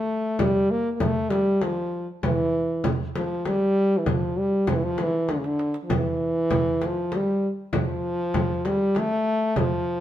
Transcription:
0.00 0.42 A3 medium
0.10 darbuka ka soft
0.39 0.72 G3 medium
0.39 frame drum medium
0.39 darbuka dum medium
0.71 0.93 A#3 medium
0.71 darbuka ka soft
0.93 1.02 A#3 medium
1.00 1.31 A3 medium
1.00 frame drum medium
1.00 darbuka dum medium
1.30 1.63 G3 medium
1.30 darbuka tek medium
1.30 frame drum medium
1.61 2.08 F3 medium
1.61 darbuka tek medium
1.61 frame drum medium
1.94 darbuka ka soft
2.23 2.85 E3 medium
2.23 frame drum medium
2.23 darbuka dum medium
2.55 darbuka ka soft
2.84 frame drum medium
2.84 darbuka dum medium
3.16 3.49 F3 medium
3.16 darbuka tek medium
3.16 frame drum medium
3.45 3.99 G3 medium
3.45 darbuka tek medium
3.45 frame drum medium
3.77 darbuka ka soft
3.98 4.10 E3 medium
4.06 4.40 F3 medium
4.06 frame drum medium
4.06 darbuka dum medium
4.38 4.70 G3 medium
4.38 darbuka ka soft
4.67 4.76 F3 medium
4.67 frame drum medium
4.67 darbuka dum medium
4.75 4.85 E3 medium
4.84 5.04 F3 medium
4.98 darbuka tek medium
4.98 frame drum medium
5.03 5.32 E3 medium
5.29 5.39 D3 medium
5.29 darbuka tek medium
5.29 frame drum medium
5.38 5.48 C#3 medium
5.44 5.77 D3 medium
5.44 darbuka ka medium
5.59 darbuka tek medium
5.74 darbuka ka medium
5.83 5.95 F3 medium
5.90 darbuka dum medium
5.90 frame drum medium
5.94 6.88 E3 medium
6.21 darbuka ka soft
6.51 frame drum medium
6.51 darbuka dum medium
6.82 darbuka tek medium
6.82 frame drum medium
6.86 7.17 F3 medium
7.12 darbuka tek medium
7.12 frame drum medium
7.16 7.48 G3 medium
7.43 darbuka ka soft
7.73 8.67 F3 medium
7.73 frame drum medium
7.73 darbuka dum medium
8.04 darbuka ka soft
8.34 frame drum medium
8.34 darbuka dum medium
8.65 9.00 G3 medium
8.65 darbuka tek medium
8.65 frame drum medium
8.95 9.59 A3 loud
8.95 darbuka tek medium
8.95 frame drum medium
9.26 darbuka ka soft
9.56 10.00 F3 medium
9.56 darbuka dum medium
9.56 frame drum medium
9.87 darbuka ka soft

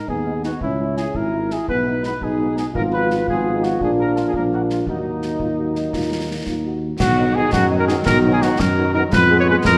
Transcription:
0.00 0.10 D#4 soft
0.08 0.53 D#2 soft
0.08 0.62 B3 soft
0.08 0.42 G#4 medium
0.08 concert bass drum soft
0.26 0.33 G#3 soft
0.26 0.33 B3 soft
0.26 0.33 D#4 soft
0.43 0.50 G#3 soft
0.43 0.51 B3 soft
0.43 0.51 D#4 soft
0.43 0.61 F#4 soft
0.43 snare soft
0.61 1.06 C#2 soft
0.61 1.12 C#4 soft
0.61 0.95 E4 medium
0.61 concert bass drum medium
0.79 0.86 G#3 soft
0.79 0.86 E4 soft
0.97 1.04 G#3 soft
0.97 1.04 E4 soft
0.97 1.14 G#4 medium
0.97 snare soft
1.14 1.59 G#1 soft
1.14 1.65 E4 soft
1.14 1.51 A#4 medium
1.14 concert bass drum soft
1.32 1.39 G#3 soft
1.32 1.39 E4 soft
1.50 1.57 G#3 soft
1.50 1.57 E4 soft
1.50 1.69 G#4 medium
1.50 snare soft
1.68 2.13 B1 soft
1.68 2.18 B3 soft
1.68 2.02 B4 medium
1.68 concert bass drum medium
1.86 1.93 G#3 soft
1.86 1.93 B3 soft
1.86 1.93 D#4 soft
2.03 2.10 G#3 soft
2.03 2.10 B3 soft
2.03 2.10 D#4 soft
2.03 2.21 B4 medium
2.03 snare soft
2.21 2.65 B1 medium
2.21 2.72 D#4 medium
2.21 2.57 G#4 medium
2.21 concert bass drum soft
2.40 2.46 G#3 soft
2.40 2.46 B3 soft
2.40 2.46 D#4 soft
2.56 2.63 G#3 soft
2.56 2.63 B3 soft
2.56 2.63 D#4 soft
2.56 2.66 G#4 medium
2.56 snare soft
2.74 3.21 G#1 medium
2.74 3.24 F3 soft
2.74 3.24 B3 soft
2.74 3.24 F4 soft
2.74 4.84 F4 medium
2.74 2.83 A#4 medium
2.74 concert bass drum medium
2.93 3.26 B4 medium
3.10 snare soft
3.28 3.75 G#1 medium
3.28 3.78 F3 soft
3.28 3.78 B3 soft
3.28 3.53 F4 soft
3.28 3.61 G#4 medium
3.28 concert bass drum soft
3.56 3.67 D#4 soft
3.63 3.81 F#4 medium
3.63 snare soft
3.81 4.20 A#1 medium
3.81 4.31 F3 soft
3.81 4.31 A#3 soft
3.81 4.31 D4 soft
3.81 3.90 G#4 medium
3.81 concert bass drum medium
4.00 4.16 A#4 medium
4.16 4.26 F4 soft
4.16 snare soft
4.28 4.35 G#4 medium
4.34 4.81 A#1 soft
4.34 4.84 F3 soft
4.34 4.84 A#3 soft
4.34 4.84 D4 soft
4.34 4.43 A#4 medium
4.34 concert bass drum soft
4.54 4.61 F#4 medium
4.70 4.79 F4 soft
4.70 snare soft
4.87 5.35 D#2 soft
4.87 6.79 F#3 soft
4.87 6.79 A#3 soft
4.87 6.44 D#4 medium
4.87 6.83 D#4 soft
4.87 5.34 F#4 soft
4.87 concert bass drum medium
5.22 snare soft
5.40 5.88 D#2 soft
5.40 5.50 F4 soft
5.40 concert bass drum soft
5.59 5.92 F#4 soft
5.75 snare soft
5.93 6.40 D#2 soft
5.93 6.27 F4 soft
5.93 concert bass drum medium
5.93 snare soft
6.29 6.37 D#4 soft
6.46 6.94 D#2 soft
6.46 6.56 F4 soft
6.46 concert bass drum soft
6.46 snare soft
6.66 6.98 F#4 soft
7.00 7.44 B1 medium
7.00 9.09 D#3 medium
7.00 9.09 F#3 medium
7.00 7.33 F#4 medium
7.00 concert bass drum medium
7.00 snare medium
7.00 crash soft
7.18 7.25 F#3 medium
7.18 7.25 B3 medium
7.18 7.25 D#4 medium
7.35 7.42 F#3 medium
7.35 7.42 B3 medium
7.35 7.42 D#4 medium
7.35 7.53 G#4 medium
7.53 7.98 F#2 medium
7.53 7.65 F#4 medium
7.53 concert bass drum medium
7.53 snare medium
7.70 7.77 F#3 medium
7.70 7.77 B3 medium
7.70 7.77 D#4 medium
7.79 7.83 A#4 medium
7.87 7.95 F#3 medium
7.87 7.95 B3 medium
7.87 7.95 D#4 medium
7.87 7.95 G#4 medium
7.87 snare medium
8.06 8.50 B1 medium
8.06 8.18 A#4 loud
8.06 concert bass drum medium
8.06 snare medium
8.25 8.31 F#3 medium
8.25 8.31 B3 medium
8.25 8.31 D#4 medium
8.32 8.41 G#4 medium
8.42 8.49 F#3 medium
8.42 8.49 B3 medium
8.42 8.49 D#4 medium
8.42 8.60 F#4 medium
8.42 snare medium
8.59 9.04 F#2 medium
8.59 8.93 A#4 medium
8.59 concert bass drum medium
8.59 snare medium
8.78 8.84 F#3 medium
8.78 8.84 B3 medium
8.78 8.84 D#4 medium
8.94 9.01 F#3 medium
8.94 9.01 B3 medium
8.94 9.01 D#4 medium
8.94 9.03 A#4 medium
9.11 9.57 F2 medium
9.11 9.78 G#3 medium
9.11 9.78 B3 medium
9.11 9.38 B4 medium
9.11 concert bass drum medium
9.11 snare medium
9.30 9.37 G#3 medium
9.30 9.37 B3 medium
9.30 9.37 G#4 medium
9.40 9.43 C#5 medium
9.48 9.55 G#3 medium
9.48 9.55 B3 medium
9.48 9.55 G#4 medium
9.48 9.57 B4 medium
9.65 9.78 F2 medium
9.65 9.77 A#4 loud
9.65 concert bass drum medium
9.65 snare medium

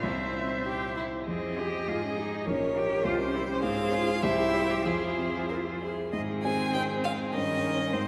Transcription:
0.03 1.24 C2 soft
0.03 0.65 C4 medium
0.03 0.58 E4 soft
0.03 1.05 C5 soft
0.03 1.07 E5 soft
0.34 0.84 C4 soft
0.65 0.94 G4 medium
0.65 1.15 G4 soft
0.96 1.27 E4 soft
0.96 1.04 E4 soft
1.27 1.86 F2 soft
1.27 1.60 C4 medium
1.27 1.84 G#4 soft
1.27 2.48 D#5 soft
1.58 1.85 F4 soft
1.58 1.90 G4 medium
1.58 1.85 G#4 soft
1.87 2.45 G#2 soft
1.87 2.05 F4 medium
1.87 2.48 G#4 soft
1.87 2.43 G#4 soft
2.04 2.17 C#4 medium
2.17 2.44 D#4 soft
2.17 2.49 D#4 medium
2.17 2.44 G#4 soft
2.46 3.03 A#1 soft
2.46 2.79 C#4 medium
2.46 3.07 A#4 soft
2.46 3.06 C#5 soft
2.46 3.06 C#5 medium
2.76 3.02 G4 soft
2.76 3.05 G4 medium
3.04 3.61 C2 medium
3.04 3.20 F4 medium
3.04 3.63 G4 soft
3.04 3.62 C5 medium
3.21 3.36 C#4 medium
3.34 3.49 E4 medium
3.34 3.60 G4 soft
3.34 3.60 C5 soft
3.50 3.64 C#4 medium
3.62 4.21 G#2 medium
3.62 3.94 C4 medium
3.62 4.24 G#4 medium
3.62 4.19 C5 medium
3.62 4.24 F5 medium
3.93 4.20 F4 soft
3.93 4.22 F4 medium
3.93 4.20 C5 medium
4.22 4.83 C2 medium
4.22 4.72 E4 medium
4.22 4.86 G4 medium
4.22 4.84 C5 medium
4.22 4.86 E5 medium
4.54 4.82 G4 soft
4.54 4.83 C5 medium
4.71 4.85 G4 medium
4.85 6.09 F2 medium
4.85 5.79 F4 medium
4.85 5.92 G#4 medium
4.85 5.43 G#4 medium
4.85 5.90 C5 medium
5.18 5.69 C4 soft
5.49 5.57 A#4 medium
5.49 6.01 C5 soft
5.81 6.12 G#4 soft
5.81 6.13 G#4 soft
6.13 6.43 G#2 medium
6.13 7.30 D#3 medium
6.13 7.35 C4 medium
6.13 7.36 G#4 medium
6.13 6.21 D#5 medium
6.43 6.71 C4 soft
6.43 6.71 G#4 soft
6.43 6.72 C5 soft
6.43 6.73 G#5 medium
6.74 7.01 C4 soft
6.74 7.01 G#4 soft
6.74 7.01 C5 soft
6.74 6.82 G5 medium
7.04 7.31 C4 soft
7.04 7.31 G#4 soft
7.04 7.31 C5 soft
7.04 7.12 F5 medium
7.34 7.63 G2 medium
7.34 7.96 D#3 medium
7.34 7.95 C#4 medium
7.34 7.95 A#4 medium
7.34 8.08 D#5 medium
7.64 7.90 D#4 soft
7.64 7.91 A#4 soft
7.64 7.91 C#5 soft
7.93 8.08 G#2 medium
7.93 8.08 G#3 medium
7.93 8.08 C4 medium
7.93 8.08 C5 medium

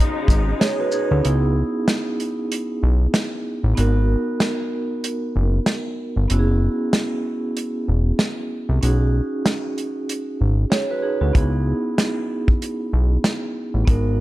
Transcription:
0.00 1.22 C#3 medium
0.00 1.22 G#3 medium
0.00 1.20 B3 medium
0.00 0.57 C#4 medium
0.00 0.58 D#4 medium
0.00 1.22 D#4 medium
0.00 0.58 F#4 medium
0.00 0.59 G#4 medium
0.28 0.54 G#1 medium
0.28 kick medium
0.28 closed hi-hat medium
0.28 shaker medium
0.60 0.77 G#4 medium
0.60 0.77 C#5 medium
0.60 snare loud
0.60 closed hi-hat medium
0.80 0.93 F#4 medium
0.80 0.93 B4 medium
0.92 1.09 D#4 medium
0.92 1.09 G#4 medium
0.92 shaker medium
1.11 1.22 D2 medium
1.11 1.41 C#4 medium
1.11 1.41 F#4 medium
1.22 1.63 C#2 loud
1.22 3.72 B3 medium
1.22 3.73 D#4 medium
1.22 3.74 E4 medium
1.22 closed hi-hat medium
1.27 3.74 G#4 medium
1.88 snare loud
1.88 closed hi-hat medium
2.20 closed hi-hat medium
2.52 closed hi-hat medium
2.83 3.07 B1 medium
3.14 snare loud
3.14 closed hi-hat medium
3.63 3.74 A1 medium
3.75 4.16 G#1 loud
3.75 6.25 B3 medium
3.75 6.25 D#4 medium
3.75 6.26 F#4 medium
3.75 closed hi-hat medium
3.79 6.27 A#4 medium
4.40 snare loud
4.40 closed hi-hat medium
5.04 closed hi-hat medium
5.36 5.60 F#1 loud
5.66 snare loud
5.66 closed hi-hat medium
6.16 6.27 G1 medium
6.28 6.69 F#1 loud
6.28 8.78 B3 medium
6.28 8.78 C#4 medium
6.28 8.79 E4 medium
6.28 closed hi-hat medium
6.33 6.38 F#4 medium
6.39 8.83 G#4 medium
6.93 snare loud
6.93 closed hi-hat medium
7.57 closed hi-hat medium
7.88 8.13 E1 loud
8.19 snare loud
8.19 closed hi-hat medium
8.69 8.80 C2 medium
8.81 9.21 B1 loud
8.81 10.67 C#4 medium
8.81 10.68 D#4 medium
8.81 10.69 F#4 medium
8.81 closed hi-hat medium
8.86 10.70 G#4 medium
9.46 snare loud
9.46 closed hi-hat medium
9.78 closed hi-hat medium
10.09 closed hi-hat medium
10.41 10.65 G#1 medium
10.70 10.88 G#4 medium
10.70 10.88 C#5 medium
10.70 snare loud
10.70 closed hi-hat medium
10.91 11.04 F#4 medium
10.91 11.03 B4 medium
11.02 11.20 D#4 medium
11.02 11.19 G#4 medium
11.21 11.32 D2 medium
11.21 11.51 C#4 medium
11.21 11.51 F#4 medium
11.33 11.73 C#2 loud
11.33 13.83 B3 medium
11.33 13.83 D#4 medium
11.33 13.84 E4 medium
11.33 kick loud
11.33 closed hi-hat medium
11.37 13.85 G#4 medium
11.98 snare loud
11.98 closed hi-hat medium
12.48 kick loud
12.62 closed hi-hat medium
12.93 13.18 B1 medium
13.24 snare loud
13.24 closed hi-hat medium
13.74 13.85 A1 medium
13.85 14.20 G#1 loud
13.85 14.20 B3 medium
13.85 14.20 D#4 medium
13.85 14.20 F#4 medium
13.85 kick loud
13.85 closed hi-hat medium
13.90 14.20 A#4 medium

